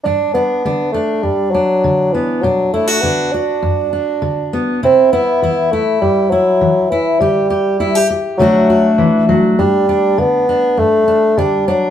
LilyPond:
<<
  \new Staff \with { instrumentName = "Steel-string acoustic guitar" } { \time 4/4 \key g \major \tempo 4 = 101 << { d'8 d'8 d'8 d'4 d'4 b8 | d'8 e'16 fis'16 d'8 fis'4 d'4 b8 | e'8 e'8 e'8 e'4 e'4 e'8 | g'8 g'8 e'16 g'16 g'8 <a d' fis'>8 fis'4. |
d'8 d'4 d'4 d'8 d'8 d'8 | } \\ { g,4 d4 g,4 d4 | b,4 d4 fis,4 d4 | c4 e4 g,4 e4 | d4 g4 d4 e8 fis8 |
g,4 d4 g,4 d4 | } >> }
  \new Staff \with { instrumentName = "Bassoon" } { \clef bass \time 4/4 \key g \major d'8 b4 a8 g8 fis4 e8 | fis8 a8 b8 d'2 r8 | c'8 b4 a8 g8 fis4 e8 | g4. r8 fis4 r4 |
g4 b4 a4 g8 fis8 | }
>>